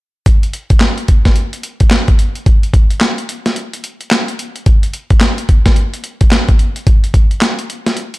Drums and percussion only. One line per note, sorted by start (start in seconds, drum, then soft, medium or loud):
0.26 kick loud
0.26 closed hi-hat medium
0.43 closed hi-hat medium
0.53 closed hi-hat medium
0.70 kick loud
0.70 closed hi-hat soft
0.80 snare loud
0.80 clap medium
0.80 closed hi-hat medium
0.98 closed hi-hat medium
1.08 kick medium
1.08 closed hi-hat medium
1.25 kick medium
1.25 snare medium
1.25 closed hi-hat soft
1.36 closed hi-hat medium
1.53 closed hi-hat soft
1.63 closed hi-hat medium
1.80 kick medium
1.80 closed hi-hat soft
1.90 snare loud
1.90 clap medium
1.90 closed hi-hat medium
2.08 kick medium
2.08 closed hi-hat soft
2.19 closed hi-hat medium
2.35 closed hi-hat soft
2.46 kick loud
2.46 closed hi-hat medium
2.63 closed hi-hat medium
2.74 kick medium
2.74 closed hi-hat medium
2.90 closed hi-hat soft
3.01 snare loud
3.01 clap medium
3.01 closed hi-hat medium
3.18 closed hi-hat medium
3.29 closed hi-hat medium
3.46 snare medium
3.46 closed hi-hat medium
3.56 closed hi-hat medium
3.73 closed hi-hat soft
3.84 closed hi-hat medium
4.01 closed hi-hat soft
4.11 snare loud
4.11 clap medium
4.11 closed hi-hat medium
4.28 closed hi-hat soft
4.39 closed hi-hat medium
4.56 closed hi-hat soft
4.66 kick loud
4.66 closed hi-hat medium
4.83 closed hi-hat medium
4.93 closed hi-hat medium
5.10 kick medium
5.10 closed hi-hat soft
5.20 snare loud
5.20 clap medium
5.20 closed hi-hat medium
5.38 closed hi-hat medium
5.49 kick medium
5.49 closed hi-hat medium
5.66 kick medium
5.66 snare medium
5.66 closed hi-hat medium
5.76 closed hi-hat medium
5.94 closed hi-hat soft
6.04 closed hi-hat medium
6.21 kick medium
6.21 closed hi-hat soft
6.31 snare loud
6.31 clap medium
6.31 closed hi-hat medium
6.48 kick medium
6.48 closed hi-hat soft
6.59 closed hi-hat medium
6.76 closed hi-hat soft
6.87 kick loud
6.87 closed hi-hat medium
7.04 closed hi-hat medium
7.14 kick medium
7.14 closed hi-hat medium
7.31 closed hi-hat soft
7.41 snare loud
7.41 clap medium
7.41 closed hi-hat medium
7.59 closed hi-hat medium
7.70 closed hi-hat medium
7.86 snare medium
7.86 closed hi-hat medium
7.97 closed hi-hat medium
8.14 closed hi-hat soft